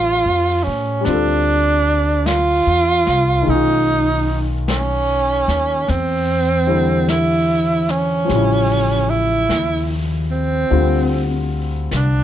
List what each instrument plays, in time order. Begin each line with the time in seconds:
Already playing: upright bass A1, upright piano G3 F4 A4 C5, tenor saxophone F4
0.25 upright bass F2
0.64 upright bass A2, tenor saxophone C#4
1.01 upright piano G3 C4
1.05 upright bass D2, tenor saxophone D4, upright piano F4, brush sweep, snare
1.12 upright piano A4
2.26 tenor saxophone F4, brush sweep, snare, hi-hat pedal
2.66 upright bass E2
3.06 upright bass C2, snare
3.42 upright piano D#3 G#3
3.46 upright bass B1, upright piano C#4, tenor saxophone D#4, brush sweep
3.53 upright piano F4
4.68 tenor saxophone C#4, brush sweep, snare, hi-hat pedal
5.47 upright bass D#2, snare
5.88 upright bass E2, tenor saxophone C4, brush sweep, snare
6.66 upright piano D3 G3 E4 C5
7.08 tenor saxophone E4, brush sweep, snare, hi-hat pedal
7.89 tenor saxophone C#4, snare
8.25 upright piano F3 G3
8.29 upright bass A1, upright piano C#3, brush sweep, snare
8.36 upright piano E4
9.10 tenor saxophone E4
9.49 upright bass D#2, brush sweep, snare, hi-hat pedal
10.31 tenor saxophone C4
10.70 upright bass D2, upright piano D3 G3 C4 F4, brush sweep
11.91 upright bass C2, brush sweep, snare, hi-hat pedal
11.96 tenor saxophone D4